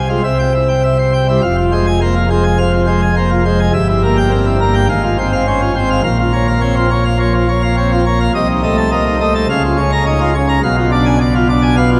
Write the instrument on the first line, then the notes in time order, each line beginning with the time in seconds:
pipe organ
Already playing: C2 C3
0.09 G#3 F4
0.24 C2 C3 E5
0.39 G5
0.54 E4
0.69 G5
0.83 E5
0.99 C5
1.13 G5
1.28 G3 E4
1.42 F1 F2 F5
1.58 F4
1.72 G#3 C5
1.87 G#5
2.01 A#3 C5
2.15 F4
2.30 G#3 C5
2.44 G#5
2.58 C3 F5
2.73 F4
2.87 G#3 C5
3.02 G#5
3.16 A#3 C5
3.30 F4
3.45 G#3 C5
3.60 G#5
3.74 G1 G2 E5
3.88 E4
4.03 A#3 A#4
4.17 G5
4.31 C4 A#4
4.46 E4
4.60 A#3 A#4
4.74 G5
4.89 G#1 G#2 F5
5.03 F4
5.18 C4 C5
5.33 F5
5.47 C#4 C5
5.61 F4
5.75 C4 C5
5.90 F5
6.04 A#1 A#2 F5
6.19 F4
6.33 A#3 C#5
6.47 F5
6.61 C4 C#5
6.76 F4
6.91 A#3 C#5
7.05 F5
7.20 F3 C#5
7.34 F4
7.49 A#3 C#5
7.62 F5
7.77 C4 C#5
7.92 F4
8.06 A#3 C#5
8.20 F5
8.35 C2 C3 D#5
8.48 D#4
8.63 A3 D#5
8.77 A5
8.92 A#3 D#5
9.06 D#4
9.21 A3 D#5
9.35 A5
9.50 C#2 C#3 F5
9.64 F4
9.78 C#4 C#5
9.92 A#5
10.06 D#4 C#5
10.21 F4
10.35 C#4 C#5
10.49 A#5
10.63 B1 B2 F5
10.77 F4
10.91 D4 D5
11.06 G#5
11.21 D5
11.35 F4
11.49 D4 D5
11.63 G#5
11.77 B3 F5
11.91 F4